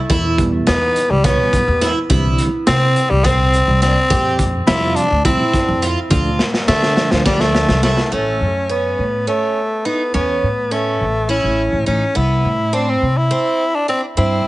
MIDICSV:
0, 0, Header, 1, 6, 480
1, 0, Start_track
1, 0, Tempo, 574163
1, 85, Time_signature, 7, 3, 24, 8
1, 12101, End_track
2, 0, Start_track
2, 0, Title_t, "Twelve-string acoustic guitar"
2, 0, Program_c, 0, 25
2, 81, Note_on_c, 0, 64, 85
2, 353, Note_off_c, 0, 64, 0
2, 558, Note_on_c, 0, 63, 80
2, 830, Note_off_c, 0, 63, 0
2, 1041, Note_on_c, 0, 61, 80
2, 1312, Note_off_c, 0, 61, 0
2, 1518, Note_on_c, 0, 64, 85
2, 1654, Note_off_c, 0, 64, 0
2, 1754, Note_on_c, 0, 64, 88
2, 2027, Note_off_c, 0, 64, 0
2, 2231, Note_on_c, 0, 60, 84
2, 2504, Note_off_c, 0, 60, 0
2, 2711, Note_on_c, 0, 60, 75
2, 2984, Note_off_c, 0, 60, 0
2, 3193, Note_on_c, 0, 62, 80
2, 3329, Note_off_c, 0, 62, 0
2, 3430, Note_on_c, 0, 67, 90
2, 3702, Note_off_c, 0, 67, 0
2, 3910, Note_on_c, 0, 65, 83
2, 4181, Note_off_c, 0, 65, 0
2, 4390, Note_on_c, 0, 64, 85
2, 4661, Note_off_c, 0, 64, 0
2, 4869, Note_on_c, 0, 65, 85
2, 5005, Note_off_c, 0, 65, 0
2, 5104, Note_on_c, 0, 65, 89
2, 5377, Note_off_c, 0, 65, 0
2, 5586, Note_on_c, 0, 62, 86
2, 5858, Note_off_c, 0, 62, 0
2, 6067, Note_on_c, 0, 62, 83
2, 6339, Note_off_c, 0, 62, 0
2, 6546, Note_on_c, 0, 64, 80
2, 6683, Note_off_c, 0, 64, 0
2, 6787, Note_on_c, 0, 57, 68
2, 7059, Note_off_c, 0, 57, 0
2, 7269, Note_on_c, 0, 61, 60
2, 7541, Note_off_c, 0, 61, 0
2, 7752, Note_on_c, 0, 61, 62
2, 8024, Note_off_c, 0, 61, 0
2, 8237, Note_on_c, 0, 63, 62
2, 8372, Note_off_c, 0, 63, 0
2, 8477, Note_on_c, 0, 61, 71
2, 8749, Note_off_c, 0, 61, 0
2, 8957, Note_on_c, 0, 61, 64
2, 9229, Note_off_c, 0, 61, 0
2, 9438, Note_on_c, 0, 64, 60
2, 9710, Note_off_c, 0, 64, 0
2, 9919, Note_on_c, 0, 63, 61
2, 10055, Note_off_c, 0, 63, 0
2, 10158, Note_on_c, 0, 59, 71
2, 10431, Note_off_c, 0, 59, 0
2, 10642, Note_on_c, 0, 60, 68
2, 10915, Note_off_c, 0, 60, 0
2, 11125, Note_on_c, 0, 60, 65
2, 11397, Note_off_c, 0, 60, 0
2, 11606, Note_on_c, 0, 62, 65
2, 11742, Note_off_c, 0, 62, 0
2, 11847, Note_on_c, 0, 60, 70
2, 12101, Note_off_c, 0, 60, 0
2, 12101, End_track
3, 0, Start_track
3, 0, Title_t, "Tenor saxophone"
3, 0, Program_c, 1, 66
3, 564, Note_on_c, 1, 59, 95
3, 927, Note_on_c, 1, 55, 85
3, 940, Note_off_c, 1, 59, 0
3, 1045, Note_on_c, 1, 59, 92
3, 1058, Note_off_c, 1, 55, 0
3, 1582, Note_off_c, 1, 59, 0
3, 2235, Note_on_c, 1, 60, 111
3, 2591, Note_on_c, 1, 55, 95
3, 2603, Note_off_c, 1, 60, 0
3, 2714, Note_on_c, 1, 60, 103
3, 2726, Note_off_c, 1, 55, 0
3, 3189, Note_off_c, 1, 60, 0
3, 3194, Note_on_c, 1, 60, 93
3, 3640, Note_off_c, 1, 60, 0
3, 3907, Note_on_c, 1, 64, 105
3, 4148, Note_on_c, 1, 62, 94
3, 4161, Note_off_c, 1, 64, 0
3, 4385, Note_off_c, 1, 62, 0
3, 4390, Note_on_c, 1, 60, 83
3, 4896, Note_off_c, 1, 60, 0
3, 5584, Note_on_c, 1, 57, 109
3, 5947, Note_on_c, 1, 53, 91
3, 5959, Note_off_c, 1, 57, 0
3, 6062, Note_off_c, 1, 53, 0
3, 6067, Note_on_c, 1, 55, 86
3, 6191, Note_on_c, 1, 57, 90
3, 6204, Note_off_c, 1, 55, 0
3, 6547, Note_off_c, 1, 57, 0
3, 6552, Note_on_c, 1, 57, 79
3, 6798, Note_on_c, 1, 61, 66
3, 6810, Note_off_c, 1, 57, 0
3, 7271, Note_off_c, 1, 61, 0
3, 7276, Note_on_c, 1, 59, 61
3, 7721, Note_off_c, 1, 59, 0
3, 7755, Note_on_c, 1, 57, 65
3, 8242, Note_on_c, 1, 59, 66
3, 8254, Note_off_c, 1, 57, 0
3, 8478, Note_off_c, 1, 59, 0
3, 8482, Note_on_c, 1, 59, 68
3, 8964, Note_on_c, 1, 57, 64
3, 8976, Note_off_c, 1, 59, 0
3, 9442, Note_off_c, 1, 57, 0
3, 9445, Note_on_c, 1, 61, 68
3, 9890, Note_off_c, 1, 61, 0
3, 9923, Note_on_c, 1, 61, 69
3, 10168, Note_on_c, 1, 64, 73
3, 10181, Note_off_c, 1, 61, 0
3, 10651, Note_on_c, 1, 62, 69
3, 10664, Note_off_c, 1, 64, 0
3, 10775, Note_on_c, 1, 60, 69
3, 10788, Note_off_c, 1, 62, 0
3, 11012, Note_on_c, 1, 64, 86
3, 11025, Note_off_c, 1, 60, 0
3, 11498, Note_on_c, 1, 62, 72
3, 11511, Note_off_c, 1, 64, 0
3, 11607, Note_off_c, 1, 62, 0
3, 11612, Note_on_c, 1, 60, 65
3, 11719, Note_off_c, 1, 60, 0
3, 11853, Note_on_c, 1, 64, 73
3, 12101, Note_off_c, 1, 64, 0
3, 12101, End_track
4, 0, Start_track
4, 0, Title_t, "Tonewheel organ"
4, 0, Program_c, 2, 16
4, 310, Note_on_c, 2, 47, 82
4, 315, Note_on_c, 2, 52, 69
4, 320, Note_on_c, 2, 55, 72
4, 325, Note_on_c, 2, 59, 90
4, 652, Note_off_c, 2, 47, 0
4, 655, Note_off_c, 2, 52, 0
4, 657, Note_off_c, 2, 55, 0
4, 660, Note_off_c, 2, 59, 0
4, 1034, Note_on_c, 2, 47, 56
4, 1038, Note_on_c, 2, 52, 55
4, 1045, Note_on_c, 2, 55, 52
4, 1048, Note_on_c, 2, 59, 64
4, 1373, Note_off_c, 2, 47, 0
4, 1375, Note_off_c, 2, 52, 0
4, 1379, Note_off_c, 2, 55, 0
4, 1380, Note_off_c, 2, 59, 0
4, 1752, Note_on_c, 2, 50, 87
4, 1756, Note_on_c, 2, 52, 86
4, 1762, Note_on_c, 2, 55, 83
4, 1767, Note_on_c, 2, 60, 95
4, 2091, Note_off_c, 2, 50, 0
4, 2093, Note_off_c, 2, 52, 0
4, 2096, Note_off_c, 2, 55, 0
4, 2099, Note_off_c, 2, 60, 0
4, 3902, Note_on_c, 2, 48, 74
4, 3907, Note_on_c, 2, 53, 66
4, 3912, Note_on_c, 2, 55, 70
4, 3917, Note_on_c, 2, 60, 78
4, 4242, Note_off_c, 2, 48, 0
4, 4245, Note_off_c, 2, 53, 0
4, 4248, Note_off_c, 2, 55, 0
4, 4250, Note_off_c, 2, 60, 0
4, 4379, Note_on_c, 2, 48, 61
4, 4385, Note_on_c, 2, 53, 59
4, 4387, Note_on_c, 2, 55, 53
4, 4393, Note_on_c, 2, 60, 67
4, 4553, Note_off_c, 2, 48, 0
4, 4556, Note_off_c, 2, 53, 0
4, 4557, Note_off_c, 2, 55, 0
4, 4560, Note_off_c, 2, 60, 0
4, 5095, Note_on_c, 2, 50, 82
4, 5103, Note_on_c, 2, 53, 81
4, 5108, Note_on_c, 2, 57, 81
4, 5112, Note_on_c, 2, 62, 88
4, 5270, Note_off_c, 2, 50, 0
4, 5274, Note_off_c, 2, 53, 0
4, 5277, Note_off_c, 2, 57, 0
4, 5279, Note_off_c, 2, 62, 0
4, 5821, Note_on_c, 2, 50, 60
4, 5826, Note_on_c, 2, 53, 58
4, 5830, Note_on_c, 2, 57, 59
4, 5834, Note_on_c, 2, 62, 74
4, 6497, Note_off_c, 2, 50, 0
4, 6499, Note_off_c, 2, 53, 0
4, 6501, Note_off_c, 2, 57, 0
4, 6503, Note_off_c, 2, 62, 0
4, 12101, End_track
5, 0, Start_track
5, 0, Title_t, "Upright bass"
5, 0, Program_c, 3, 32
5, 84, Note_on_c, 3, 40, 95
5, 509, Note_off_c, 3, 40, 0
5, 567, Note_on_c, 3, 40, 83
5, 778, Note_off_c, 3, 40, 0
5, 923, Note_on_c, 3, 37, 81
5, 1135, Note_off_c, 3, 37, 0
5, 1402, Note_on_c, 3, 40, 94
5, 1614, Note_off_c, 3, 40, 0
5, 1757, Note_on_c, 3, 36, 94
5, 1971, Note_off_c, 3, 36, 0
5, 2239, Note_on_c, 3, 48, 87
5, 2452, Note_off_c, 3, 48, 0
5, 2598, Note_on_c, 3, 36, 88
5, 3023, Note_off_c, 3, 36, 0
5, 3075, Note_on_c, 3, 36, 97
5, 3288, Note_off_c, 3, 36, 0
5, 3433, Note_on_c, 3, 41, 105
5, 3859, Note_off_c, 3, 41, 0
5, 3914, Note_on_c, 3, 41, 84
5, 4126, Note_off_c, 3, 41, 0
5, 4271, Note_on_c, 3, 38, 83
5, 4484, Note_off_c, 3, 38, 0
5, 4752, Note_on_c, 3, 41, 93
5, 4964, Note_off_c, 3, 41, 0
5, 5108, Note_on_c, 3, 38, 95
5, 5322, Note_off_c, 3, 38, 0
5, 5587, Note_on_c, 3, 50, 94
5, 5801, Note_off_c, 3, 50, 0
5, 5950, Note_on_c, 3, 38, 90
5, 6375, Note_off_c, 3, 38, 0
5, 6426, Note_on_c, 3, 36, 98
5, 6641, Note_off_c, 3, 36, 0
5, 6790, Note_on_c, 3, 33, 69
5, 7003, Note_off_c, 3, 33, 0
5, 7030, Note_on_c, 3, 42, 76
5, 7457, Note_off_c, 3, 42, 0
5, 7513, Note_on_c, 3, 45, 67
5, 7726, Note_off_c, 3, 45, 0
5, 8480, Note_on_c, 3, 40, 78
5, 8691, Note_off_c, 3, 40, 0
5, 8720, Note_on_c, 3, 45, 63
5, 9145, Note_off_c, 3, 45, 0
5, 9202, Note_on_c, 3, 33, 66
5, 9521, Note_off_c, 3, 33, 0
5, 9563, Note_on_c, 3, 33, 70
5, 9775, Note_off_c, 3, 33, 0
5, 9802, Note_on_c, 3, 33, 67
5, 9908, Note_off_c, 3, 33, 0
5, 9926, Note_on_c, 3, 33, 68
5, 10030, Note_off_c, 3, 33, 0
5, 10165, Note_on_c, 3, 36, 82
5, 10377, Note_off_c, 3, 36, 0
5, 10406, Note_on_c, 3, 45, 78
5, 10832, Note_off_c, 3, 45, 0
5, 10887, Note_on_c, 3, 48, 69
5, 11099, Note_off_c, 3, 48, 0
5, 11850, Note_on_c, 3, 43, 80
5, 12062, Note_off_c, 3, 43, 0
5, 12101, End_track
6, 0, Start_track
6, 0, Title_t, "Drums"
6, 82, Note_on_c, 9, 36, 113
6, 82, Note_on_c, 9, 42, 73
6, 166, Note_off_c, 9, 36, 0
6, 166, Note_off_c, 9, 42, 0
6, 321, Note_on_c, 9, 36, 73
6, 321, Note_on_c, 9, 42, 52
6, 405, Note_off_c, 9, 36, 0
6, 405, Note_off_c, 9, 42, 0
6, 561, Note_on_c, 9, 38, 105
6, 561, Note_on_c, 9, 42, 76
6, 645, Note_off_c, 9, 38, 0
6, 645, Note_off_c, 9, 42, 0
6, 802, Note_on_c, 9, 42, 60
6, 885, Note_off_c, 9, 42, 0
6, 1038, Note_on_c, 9, 38, 35
6, 1038, Note_on_c, 9, 42, 76
6, 1039, Note_on_c, 9, 36, 101
6, 1121, Note_off_c, 9, 38, 0
6, 1121, Note_off_c, 9, 42, 0
6, 1122, Note_off_c, 9, 36, 0
6, 1279, Note_on_c, 9, 36, 66
6, 1280, Note_on_c, 9, 42, 60
6, 1362, Note_off_c, 9, 36, 0
6, 1363, Note_off_c, 9, 42, 0
6, 1517, Note_on_c, 9, 38, 34
6, 1517, Note_on_c, 9, 42, 59
6, 1600, Note_off_c, 9, 38, 0
6, 1600, Note_off_c, 9, 42, 0
6, 1755, Note_on_c, 9, 42, 81
6, 1756, Note_on_c, 9, 36, 105
6, 1838, Note_off_c, 9, 42, 0
6, 1840, Note_off_c, 9, 36, 0
6, 1992, Note_on_c, 9, 42, 62
6, 2076, Note_off_c, 9, 42, 0
6, 2232, Note_on_c, 9, 38, 112
6, 2232, Note_on_c, 9, 42, 88
6, 2315, Note_off_c, 9, 38, 0
6, 2315, Note_off_c, 9, 42, 0
6, 2474, Note_on_c, 9, 42, 61
6, 2558, Note_off_c, 9, 42, 0
6, 2714, Note_on_c, 9, 36, 112
6, 2714, Note_on_c, 9, 38, 36
6, 2714, Note_on_c, 9, 42, 89
6, 2798, Note_off_c, 9, 36, 0
6, 2798, Note_off_c, 9, 38, 0
6, 2798, Note_off_c, 9, 42, 0
6, 2955, Note_on_c, 9, 42, 61
6, 3039, Note_off_c, 9, 42, 0
6, 3192, Note_on_c, 9, 38, 33
6, 3192, Note_on_c, 9, 42, 57
6, 3276, Note_off_c, 9, 38, 0
6, 3276, Note_off_c, 9, 42, 0
6, 3429, Note_on_c, 9, 42, 92
6, 3431, Note_on_c, 9, 36, 109
6, 3512, Note_off_c, 9, 42, 0
6, 3514, Note_off_c, 9, 36, 0
6, 3668, Note_on_c, 9, 42, 61
6, 3670, Note_on_c, 9, 36, 67
6, 3752, Note_off_c, 9, 42, 0
6, 3754, Note_off_c, 9, 36, 0
6, 3908, Note_on_c, 9, 38, 109
6, 3908, Note_on_c, 9, 42, 82
6, 3991, Note_off_c, 9, 38, 0
6, 3991, Note_off_c, 9, 42, 0
6, 4149, Note_on_c, 9, 42, 61
6, 4233, Note_off_c, 9, 42, 0
6, 4387, Note_on_c, 9, 42, 84
6, 4388, Note_on_c, 9, 36, 110
6, 4471, Note_off_c, 9, 42, 0
6, 4472, Note_off_c, 9, 36, 0
6, 4627, Note_on_c, 9, 36, 68
6, 4627, Note_on_c, 9, 38, 33
6, 4627, Note_on_c, 9, 42, 60
6, 4711, Note_off_c, 9, 36, 0
6, 4711, Note_off_c, 9, 38, 0
6, 4711, Note_off_c, 9, 42, 0
6, 4867, Note_on_c, 9, 42, 53
6, 4950, Note_off_c, 9, 42, 0
6, 5106, Note_on_c, 9, 36, 107
6, 5107, Note_on_c, 9, 42, 77
6, 5190, Note_off_c, 9, 36, 0
6, 5190, Note_off_c, 9, 42, 0
6, 5344, Note_on_c, 9, 38, 61
6, 5428, Note_off_c, 9, 38, 0
6, 5467, Note_on_c, 9, 38, 58
6, 5551, Note_off_c, 9, 38, 0
6, 5588, Note_on_c, 9, 38, 68
6, 5671, Note_off_c, 9, 38, 0
6, 5707, Note_on_c, 9, 38, 55
6, 5791, Note_off_c, 9, 38, 0
6, 5827, Note_on_c, 9, 38, 79
6, 5911, Note_off_c, 9, 38, 0
6, 5946, Note_on_c, 9, 38, 79
6, 6030, Note_off_c, 9, 38, 0
6, 6066, Note_on_c, 9, 36, 103
6, 6068, Note_on_c, 9, 38, 85
6, 6150, Note_off_c, 9, 36, 0
6, 6152, Note_off_c, 9, 38, 0
6, 6187, Note_on_c, 9, 38, 73
6, 6271, Note_off_c, 9, 38, 0
6, 6308, Note_on_c, 9, 38, 84
6, 6392, Note_off_c, 9, 38, 0
6, 6425, Note_on_c, 9, 38, 83
6, 6509, Note_off_c, 9, 38, 0
6, 6546, Note_on_c, 9, 38, 98
6, 6630, Note_off_c, 9, 38, 0
6, 6666, Note_on_c, 9, 38, 87
6, 6749, Note_off_c, 9, 38, 0
6, 12101, End_track
0, 0, End_of_file